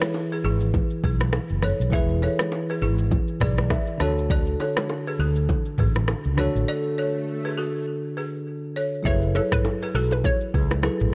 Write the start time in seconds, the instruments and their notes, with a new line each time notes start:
Already playing: tine electric piano E3 E4 G#4 B4
0.02 cross-stick, low bongo, shaker
0.14 high bongo, shaker
0.32 balafon G#4 B4, shaker
0.44 fretless electric bass G#1, balafon E4 G#4, low bongo, shaker
0.61 shaker
0.74 kick, low bongo, low conga, shaker
0.90 shaker
1.04 fretless electric bass B1, balafon G#4 B4, kick, shaker
1.20 cross-stick, low bongo, shaker
1.33 cross-stick, high bongo, shaker
1.49 fretless electric bass F#1, shaker
1.62 balafon A4 C#5, cross-stick, low conga, shaker
1.80 fretless electric bass B1, shaker
1.90 fretless electric bass E1, tine electric piano E3 E4 G#4, balafon B4 E5, kick, low conga, shaker
1.95 tine electric piano B4
2.09 shaker
2.22 balafon A4 C#5, high bongo, shaker
2.39 cross-stick, low bongo, shaker
2.52 high bongo, shaker
2.69 balafon G#4 B4, shaker
2.82 fretless electric bass G#1, balafon E4 G#4, low bongo, shaker
2.98 shaker
3.11 kick, low bongo, low conga, shaker
3.28 shaker
3.40 fretless electric bass B1, balafon G#4 B4, tine electric piano D5, kick, cross-stick, mid tom, shaker
3.58 cross-stick, low bongo, shaker
3.70 tine electric piano E5, kick, cross-stick, high bongo, shaker
3.87 shaker
3.98 fretless electric bass D2, tine electric piano D3 D4 F#4 A5, balafon A4 C#5, cross-stick, low conga, shaker
4.03 tine electric piano A4
4.19 shaker
4.30 balafon A4 D5, kick, swell, low conga, shaker
4.47 shaker
4.60 balafon A4 C#5, high bongo, shaker
4.77 cross-stick, low bongo, shaker
4.89 high bongo, shaker
5.07 balafon G#4 B4, shaker
5.19 fretless electric bass D2, balafon F#4 A4, low bongo, shaker
5.36 shaker
5.49 kick, low bongo, low conga, shaker
5.65 shaker
5.78 fretless electric bass A1, balafon G#4 B4, kick, mid tom, shaker
5.95 cross-stick, low bongo, shaker
6.08 cross-stick, high bongo, shaker
6.25 fretless electric bass C#2, shaker
6.35 tine electric piano D3 D4 F#4, balafon C#5, cross-stick, low conga, shaker
6.39 balafon A4, tine electric piano A4
6.55 fretless electric bass A1, shaker
6.68 balafon A4 D5
6.98 balafon A4 C#5
7.45 balafon G#4 B4
7.58 balafon F#4 A4
8.17 balafon G#4 B4
8.76 balafon A4 C#5
9.03 fretless electric bass F#1, tine electric piano F#3 E4 G#4 A4, synth pluck C#5, balafon E5, kick, low conga, shaker
9.07 tine electric piano B4, balafon C#5
9.22 shaker
9.35 synth pluck A4, balafon A4 C#5, high bongo, shaker
9.52 synth pluck B4, kick, cross-stick, mid tom, shaker
9.64 high bongo, shaker
9.82 balafon G#4 B4, shaker
9.94 fretless electric bass B1, balafon F#4 A4, synth pluck A4, open hi-hat, low bongo, shaker
10.11 synth pluck B4, high bongo, shaker
10.24 synth pluck C#5, kick, low bongo, low conga, shaker
10.41 shaker
10.54 fretless electric bass C#2, balafon G#4 B4, kick, shaker
10.71 cross-stick, low bongo, shaker
10.82 tine electric piano F#3 E4 G#4 A4 B4, cross-stick, high bongo, shaker
11.00 fretless electric bass A1, mid tom, shaker